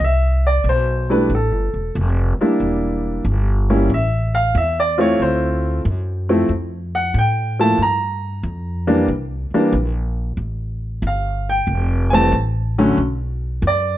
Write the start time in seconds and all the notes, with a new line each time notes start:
0.00 C2
0.04 E5
0.47 D5
0.64 B1
0.69 C5
1.09 G3 A3 D4 E4 B4
1.29 A1
1.35 A4
1.51 G1
1.74 E1
1.95 F1
2.39 G3 A#3 D4 E4, muted upright bass stroke
2.60 E1
3.25 G1
3.70 G3 A#3 C#4 E4
3.90 A1
3.94 E5
4.35 F5
4.55 E2 E5
4.80 D5
4.98 A3 C4 E4 F4 C#5
5.20 D2 C5
5.85 F#2
6.29 F3 A3 C4 E4
6.49 F2
6.95 F#5
7.14 A2
7.18 G5
7.59 F3 A3 A#3 E4 A5
7.78 G2
7.82 A#5
8.43 F2
8.87 E3 G3 A#3 D4
9.08 C2
9.51 E3 G3 A#3 D4, muted upright bass stroke
9.72 A#1
10.37 A1
11.02 G1
11.07 F5
11.49 G5
11.67 F1
12.10 E3 G3 A3 C4 G#5
12.14 A5
12.32 A1
12.78 D3 F#3 A3 C#4
12.97 B1
13.62 F#2
13.67 D5